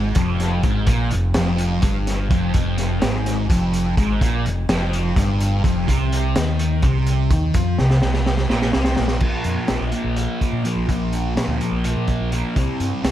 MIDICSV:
0, 0, Header, 1, 4, 480
1, 0, Start_track
1, 0, Tempo, 476569
1, 888, Time_signature, 7, 3, 24, 8
1, 13208, End_track
2, 0, Start_track
2, 0, Title_t, "Distorted electric guitar"
2, 0, Program_c, 0, 30
2, 0, Note_on_c, 0, 44, 103
2, 158, Note_off_c, 0, 44, 0
2, 162, Note_on_c, 0, 41, 101
2, 636, Note_off_c, 0, 41, 0
2, 640, Note_on_c, 0, 44, 99
2, 877, Note_off_c, 0, 44, 0
2, 877, Note_on_c, 0, 46, 102
2, 1115, Note_off_c, 0, 46, 0
2, 1125, Note_on_c, 0, 41, 65
2, 1318, Note_off_c, 0, 41, 0
2, 1374, Note_on_c, 0, 41, 101
2, 1838, Note_off_c, 0, 41, 0
2, 1838, Note_on_c, 0, 43, 88
2, 2312, Note_off_c, 0, 43, 0
2, 2316, Note_on_c, 0, 41, 85
2, 2552, Note_off_c, 0, 41, 0
2, 2565, Note_on_c, 0, 41, 95
2, 3044, Note_off_c, 0, 41, 0
2, 3044, Note_on_c, 0, 44, 92
2, 3514, Note_off_c, 0, 44, 0
2, 3520, Note_on_c, 0, 41, 95
2, 3992, Note_off_c, 0, 41, 0
2, 4000, Note_on_c, 0, 44, 96
2, 4232, Note_off_c, 0, 44, 0
2, 4252, Note_on_c, 0, 46, 99
2, 4478, Note_off_c, 0, 46, 0
2, 4490, Note_on_c, 0, 41, 64
2, 4676, Note_off_c, 0, 41, 0
2, 4725, Note_on_c, 0, 41, 96
2, 5194, Note_off_c, 0, 41, 0
2, 5206, Note_on_c, 0, 43, 97
2, 5674, Note_off_c, 0, 43, 0
2, 5679, Note_on_c, 0, 41, 104
2, 5911, Note_off_c, 0, 41, 0
2, 5913, Note_on_c, 0, 48, 98
2, 6387, Note_off_c, 0, 48, 0
2, 6419, Note_on_c, 0, 51, 100
2, 6880, Note_off_c, 0, 51, 0
2, 6888, Note_on_c, 0, 48, 94
2, 7355, Note_off_c, 0, 48, 0
2, 7377, Note_on_c, 0, 51, 106
2, 7599, Note_off_c, 0, 51, 0
2, 7611, Note_on_c, 0, 53, 95
2, 7836, Note_off_c, 0, 53, 0
2, 7858, Note_on_c, 0, 48, 63
2, 8039, Note_off_c, 0, 48, 0
2, 8085, Note_on_c, 0, 48, 90
2, 8550, Note_off_c, 0, 48, 0
2, 8554, Note_on_c, 0, 46, 100
2, 8789, Note_off_c, 0, 46, 0
2, 8796, Note_on_c, 0, 48, 92
2, 9030, Note_off_c, 0, 48, 0
2, 9037, Note_on_c, 0, 46, 103
2, 9255, Note_off_c, 0, 46, 0
2, 9268, Note_on_c, 0, 46, 74
2, 9287, Note_on_c, 0, 53, 79
2, 9294, Note_on_c, 0, 58, 89
2, 9740, Note_off_c, 0, 46, 0
2, 9744, Note_on_c, 0, 46, 74
2, 9755, Note_off_c, 0, 53, 0
2, 9759, Note_on_c, 0, 53, 76
2, 9772, Note_off_c, 0, 58, 0
2, 9776, Note_on_c, 0, 58, 83
2, 9985, Note_off_c, 0, 58, 0
2, 9997, Note_on_c, 0, 58, 58
2, 10012, Note_off_c, 0, 53, 0
2, 10024, Note_on_c, 0, 53, 45
2, 10234, Note_off_c, 0, 46, 0
2, 10716, Note_on_c, 0, 46, 66
2, 10717, Note_off_c, 0, 53, 0
2, 10728, Note_off_c, 0, 58, 0
2, 10729, Note_on_c, 0, 53, 71
2, 10740, Note_on_c, 0, 58, 66
2, 10935, Note_off_c, 0, 46, 0
2, 10947, Note_on_c, 0, 46, 78
2, 10951, Note_off_c, 0, 53, 0
2, 10963, Note_on_c, 0, 53, 78
2, 10969, Note_off_c, 0, 58, 0
2, 10981, Note_on_c, 0, 58, 71
2, 11419, Note_off_c, 0, 46, 0
2, 11431, Note_off_c, 0, 53, 0
2, 11431, Note_on_c, 0, 46, 85
2, 11442, Note_off_c, 0, 58, 0
2, 11443, Note_on_c, 0, 53, 76
2, 11454, Note_on_c, 0, 58, 90
2, 11653, Note_off_c, 0, 58, 0
2, 11665, Note_on_c, 0, 58, 57
2, 11690, Note_off_c, 0, 53, 0
2, 11702, Note_on_c, 0, 53, 42
2, 11922, Note_off_c, 0, 46, 0
2, 12397, Note_on_c, 0, 46, 58
2, 12401, Note_off_c, 0, 53, 0
2, 12413, Note_on_c, 0, 53, 66
2, 12419, Note_off_c, 0, 58, 0
2, 12431, Note_on_c, 0, 58, 69
2, 12632, Note_off_c, 0, 46, 0
2, 12640, Note_off_c, 0, 53, 0
2, 12646, Note_on_c, 0, 48, 80
2, 12649, Note_off_c, 0, 58, 0
2, 12664, Note_on_c, 0, 55, 81
2, 12678, Note_on_c, 0, 60, 83
2, 13114, Note_off_c, 0, 48, 0
2, 13118, Note_on_c, 0, 48, 82
2, 13132, Note_off_c, 0, 55, 0
2, 13136, Note_on_c, 0, 55, 74
2, 13142, Note_off_c, 0, 60, 0
2, 13146, Note_on_c, 0, 60, 96
2, 13208, Note_off_c, 0, 48, 0
2, 13208, Note_off_c, 0, 55, 0
2, 13208, Note_off_c, 0, 60, 0
2, 13208, End_track
3, 0, Start_track
3, 0, Title_t, "Fingered electric bass"
3, 0, Program_c, 1, 33
3, 0, Note_on_c, 1, 32, 89
3, 127, Note_off_c, 1, 32, 0
3, 161, Note_on_c, 1, 29, 103
3, 610, Note_off_c, 1, 29, 0
3, 646, Note_on_c, 1, 32, 77
3, 870, Note_off_c, 1, 32, 0
3, 881, Note_on_c, 1, 34, 81
3, 1107, Note_off_c, 1, 34, 0
3, 1130, Note_on_c, 1, 29, 81
3, 1351, Note_off_c, 1, 29, 0
3, 1374, Note_on_c, 1, 29, 79
3, 1815, Note_off_c, 1, 29, 0
3, 1843, Note_on_c, 1, 31, 84
3, 2289, Note_off_c, 1, 31, 0
3, 2329, Note_on_c, 1, 29, 78
3, 2549, Note_off_c, 1, 29, 0
3, 2563, Note_on_c, 1, 29, 77
3, 3008, Note_off_c, 1, 29, 0
3, 3047, Note_on_c, 1, 32, 95
3, 3490, Note_off_c, 1, 32, 0
3, 3527, Note_on_c, 1, 29, 102
3, 3969, Note_off_c, 1, 29, 0
3, 4002, Note_on_c, 1, 32, 74
3, 4223, Note_off_c, 1, 32, 0
3, 4244, Note_on_c, 1, 34, 77
3, 4464, Note_off_c, 1, 34, 0
3, 4484, Note_on_c, 1, 29, 78
3, 4704, Note_off_c, 1, 29, 0
3, 4719, Note_on_c, 1, 29, 96
3, 5165, Note_off_c, 1, 29, 0
3, 5202, Note_on_c, 1, 31, 96
3, 5646, Note_off_c, 1, 31, 0
3, 5687, Note_on_c, 1, 29, 78
3, 5905, Note_off_c, 1, 29, 0
3, 5928, Note_on_c, 1, 36, 88
3, 6369, Note_off_c, 1, 36, 0
3, 6412, Note_on_c, 1, 39, 87
3, 6851, Note_off_c, 1, 39, 0
3, 6881, Note_on_c, 1, 36, 90
3, 7325, Note_off_c, 1, 36, 0
3, 7361, Note_on_c, 1, 39, 71
3, 7582, Note_off_c, 1, 39, 0
3, 7600, Note_on_c, 1, 41, 81
3, 7821, Note_off_c, 1, 41, 0
3, 7848, Note_on_c, 1, 36, 80
3, 8066, Note_off_c, 1, 36, 0
3, 8096, Note_on_c, 1, 36, 88
3, 8534, Note_off_c, 1, 36, 0
3, 8557, Note_on_c, 1, 34, 85
3, 8781, Note_off_c, 1, 34, 0
3, 8812, Note_on_c, 1, 36, 76
3, 9029, Note_off_c, 1, 36, 0
3, 9056, Note_on_c, 1, 34, 81
3, 9272, Note_off_c, 1, 34, 0
3, 9280, Note_on_c, 1, 34, 77
3, 9377, Note_off_c, 1, 34, 0
3, 9517, Note_on_c, 1, 41, 74
3, 9616, Note_off_c, 1, 41, 0
3, 9762, Note_on_c, 1, 34, 76
3, 9859, Note_off_c, 1, 34, 0
3, 9879, Note_on_c, 1, 34, 72
3, 9978, Note_off_c, 1, 34, 0
3, 10116, Note_on_c, 1, 34, 70
3, 10315, Note_off_c, 1, 34, 0
3, 10601, Note_on_c, 1, 46, 74
3, 10700, Note_off_c, 1, 46, 0
3, 10838, Note_on_c, 1, 34, 68
3, 11431, Note_off_c, 1, 34, 0
3, 11555, Note_on_c, 1, 38, 68
3, 11659, Note_off_c, 1, 38, 0
3, 11795, Note_on_c, 1, 34, 73
3, 11998, Note_off_c, 1, 34, 0
3, 12051, Note_on_c, 1, 46, 75
3, 12248, Note_off_c, 1, 46, 0
3, 12293, Note_on_c, 1, 34, 73
3, 12490, Note_off_c, 1, 34, 0
3, 12660, Note_on_c, 1, 36, 67
3, 12756, Note_off_c, 1, 36, 0
3, 12894, Note_on_c, 1, 43, 77
3, 12993, Note_off_c, 1, 43, 0
3, 13131, Note_on_c, 1, 36, 83
3, 13208, Note_off_c, 1, 36, 0
3, 13208, End_track
4, 0, Start_track
4, 0, Title_t, "Drums"
4, 150, Note_on_c, 9, 42, 91
4, 161, Note_on_c, 9, 36, 100
4, 251, Note_off_c, 9, 42, 0
4, 262, Note_off_c, 9, 36, 0
4, 401, Note_on_c, 9, 42, 62
4, 403, Note_on_c, 9, 38, 32
4, 502, Note_off_c, 9, 42, 0
4, 504, Note_off_c, 9, 38, 0
4, 638, Note_on_c, 9, 42, 62
4, 641, Note_on_c, 9, 36, 108
4, 738, Note_off_c, 9, 42, 0
4, 742, Note_off_c, 9, 36, 0
4, 873, Note_on_c, 9, 42, 96
4, 879, Note_on_c, 9, 36, 105
4, 973, Note_off_c, 9, 42, 0
4, 980, Note_off_c, 9, 36, 0
4, 1115, Note_on_c, 9, 42, 73
4, 1215, Note_off_c, 9, 42, 0
4, 1352, Note_on_c, 9, 42, 90
4, 1354, Note_on_c, 9, 38, 110
4, 1452, Note_off_c, 9, 42, 0
4, 1454, Note_off_c, 9, 38, 0
4, 1595, Note_on_c, 9, 42, 72
4, 1696, Note_off_c, 9, 42, 0
4, 1833, Note_on_c, 9, 42, 83
4, 1842, Note_on_c, 9, 36, 98
4, 1934, Note_off_c, 9, 42, 0
4, 1942, Note_off_c, 9, 36, 0
4, 2086, Note_on_c, 9, 42, 64
4, 2088, Note_on_c, 9, 38, 32
4, 2187, Note_off_c, 9, 42, 0
4, 2189, Note_off_c, 9, 38, 0
4, 2323, Note_on_c, 9, 42, 70
4, 2324, Note_on_c, 9, 36, 105
4, 2424, Note_off_c, 9, 42, 0
4, 2425, Note_off_c, 9, 36, 0
4, 2556, Note_on_c, 9, 42, 81
4, 2563, Note_on_c, 9, 36, 94
4, 2657, Note_off_c, 9, 42, 0
4, 2663, Note_off_c, 9, 36, 0
4, 2799, Note_on_c, 9, 42, 65
4, 2801, Note_on_c, 9, 38, 33
4, 2900, Note_off_c, 9, 42, 0
4, 2902, Note_off_c, 9, 38, 0
4, 3039, Note_on_c, 9, 42, 84
4, 3041, Note_on_c, 9, 38, 104
4, 3139, Note_off_c, 9, 42, 0
4, 3141, Note_off_c, 9, 38, 0
4, 3285, Note_on_c, 9, 42, 63
4, 3287, Note_on_c, 9, 38, 34
4, 3386, Note_off_c, 9, 42, 0
4, 3388, Note_off_c, 9, 38, 0
4, 3523, Note_on_c, 9, 36, 99
4, 3526, Note_on_c, 9, 42, 85
4, 3623, Note_off_c, 9, 36, 0
4, 3627, Note_off_c, 9, 42, 0
4, 3762, Note_on_c, 9, 42, 62
4, 3863, Note_off_c, 9, 42, 0
4, 4003, Note_on_c, 9, 36, 101
4, 4006, Note_on_c, 9, 42, 68
4, 4104, Note_off_c, 9, 36, 0
4, 4107, Note_off_c, 9, 42, 0
4, 4244, Note_on_c, 9, 36, 106
4, 4248, Note_on_c, 9, 42, 92
4, 4345, Note_off_c, 9, 36, 0
4, 4349, Note_off_c, 9, 42, 0
4, 4489, Note_on_c, 9, 42, 71
4, 4590, Note_off_c, 9, 42, 0
4, 4723, Note_on_c, 9, 42, 88
4, 4725, Note_on_c, 9, 38, 120
4, 4824, Note_off_c, 9, 42, 0
4, 4826, Note_off_c, 9, 38, 0
4, 4968, Note_on_c, 9, 42, 68
4, 5069, Note_off_c, 9, 42, 0
4, 5201, Note_on_c, 9, 36, 101
4, 5204, Note_on_c, 9, 42, 90
4, 5206, Note_on_c, 9, 38, 32
4, 5302, Note_off_c, 9, 36, 0
4, 5305, Note_off_c, 9, 42, 0
4, 5307, Note_off_c, 9, 38, 0
4, 5443, Note_on_c, 9, 42, 64
4, 5544, Note_off_c, 9, 42, 0
4, 5681, Note_on_c, 9, 36, 100
4, 5687, Note_on_c, 9, 42, 70
4, 5782, Note_off_c, 9, 36, 0
4, 5788, Note_off_c, 9, 42, 0
4, 5923, Note_on_c, 9, 36, 97
4, 5928, Note_on_c, 9, 42, 90
4, 6024, Note_off_c, 9, 36, 0
4, 6029, Note_off_c, 9, 42, 0
4, 6168, Note_on_c, 9, 42, 70
4, 6269, Note_off_c, 9, 42, 0
4, 6402, Note_on_c, 9, 42, 95
4, 6404, Note_on_c, 9, 38, 104
4, 6503, Note_off_c, 9, 42, 0
4, 6505, Note_off_c, 9, 38, 0
4, 6641, Note_on_c, 9, 42, 72
4, 6742, Note_off_c, 9, 42, 0
4, 6873, Note_on_c, 9, 42, 78
4, 6879, Note_on_c, 9, 36, 98
4, 6974, Note_off_c, 9, 42, 0
4, 6980, Note_off_c, 9, 36, 0
4, 7115, Note_on_c, 9, 42, 64
4, 7216, Note_off_c, 9, 42, 0
4, 7358, Note_on_c, 9, 36, 108
4, 7359, Note_on_c, 9, 42, 65
4, 7459, Note_off_c, 9, 36, 0
4, 7460, Note_off_c, 9, 42, 0
4, 7594, Note_on_c, 9, 42, 91
4, 7600, Note_on_c, 9, 36, 97
4, 7695, Note_off_c, 9, 42, 0
4, 7701, Note_off_c, 9, 36, 0
4, 7840, Note_on_c, 9, 38, 61
4, 7941, Note_off_c, 9, 38, 0
4, 7962, Note_on_c, 9, 38, 55
4, 8063, Note_off_c, 9, 38, 0
4, 8076, Note_on_c, 9, 38, 60
4, 8176, Note_off_c, 9, 38, 0
4, 8199, Note_on_c, 9, 38, 61
4, 8300, Note_off_c, 9, 38, 0
4, 8323, Note_on_c, 9, 38, 68
4, 8424, Note_off_c, 9, 38, 0
4, 8435, Note_on_c, 9, 38, 58
4, 8536, Note_off_c, 9, 38, 0
4, 8561, Note_on_c, 9, 38, 72
4, 8662, Note_off_c, 9, 38, 0
4, 8680, Note_on_c, 9, 38, 68
4, 8781, Note_off_c, 9, 38, 0
4, 8795, Note_on_c, 9, 38, 87
4, 8896, Note_off_c, 9, 38, 0
4, 8909, Note_on_c, 9, 38, 84
4, 9010, Note_off_c, 9, 38, 0
4, 9028, Note_on_c, 9, 38, 89
4, 9129, Note_off_c, 9, 38, 0
4, 9145, Note_on_c, 9, 38, 89
4, 9246, Note_off_c, 9, 38, 0
4, 9271, Note_on_c, 9, 49, 83
4, 9279, Note_on_c, 9, 36, 94
4, 9371, Note_off_c, 9, 49, 0
4, 9380, Note_off_c, 9, 36, 0
4, 9510, Note_on_c, 9, 42, 55
4, 9611, Note_off_c, 9, 42, 0
4, 9749, Note_on_c, 9, 42, 79
4, 9751, Note_on_c, 9, 38, 104
4, 9850, Note_off_c, 9, 42, 0
4, 9852, Note_off_c, 9, 38, 0
4, 9990, Note_on_c, 9, 42, 52
4, 10091, Note_off_c, 9, 42, 0
4, 10238, Note_on_c, 9, 42, 61
4, 10339, Note_off_c, 9, 42, 0
4, 10487, Note_on_c, 9, 36, 63
4, 10491, Note_on_c, 9, 42, 56
4, 10588, Note_off_c, 9, 36, 0
4, 10591, Note_off_c, 9, 42, 0
4, 10725, Note_on_c, 9, 42, 57
4, 10826, Note_off_c, 9, 42, 0
4, 10967, Note_on_c, 9, 36, 90
4, 10968, Note_on_c, 9, 42, 70
4, 11068, Note_off_c, 9, 36, 0
4, 11069, Note_off_c, 9, 42, 0
4, 11206, Note_on_c, 9, 42, 52
4, 11307, Note_off_c, 9, 42, 0
4, 11453, Note_on_c, 9, 42, 74
4, 11455, Note_on_c, 9, 38, 103
4, 11554, Note_off_c, 9, 42, 0
4, 11556, Note_off_c, 9, 38, 0
4, 11691, Note_on_c, 9, 42, 55
4, 11792, Note_off_c, 9, 42, 0
4, 11927, Note_on_c, 9, 42, 70
4, 12028, Note_off_c, 9, 42, 0
4, 12163, Note_on_c, 9, 42, 49
4, 12167, Note_on_c, 9, 36, 61
4, 12264, Note_off_c, 9, 42, 0
4, 12268, Note_off_c, 9, 36, 0
4, 12409, Note_on_c, 9, 42, 59
4, 12510, Note_off_c, 9, 42, 0
4, 12653, Note_on_c, 9, 36, 96
4, 12653, Note_on_c, 9, 42, 75
4, 12754, Note_off_c, 9, 36, 0
4, 12754, Note_off_c, 9, 42, 0
4, 12894, Note_on_c, 9, 42, 56
4, 12995, Note_off_c, 9, 42, 0
4, 13138, Note_on_c, 9, 42, 88
4, 13140, Note_on_c, 9, 38, 101
4, 13208, Note_off_c, 9, 38, 0
4, 13208, Note_off_c, 9, 42, 0
4, 13208, End_track
0, 0, End_of_file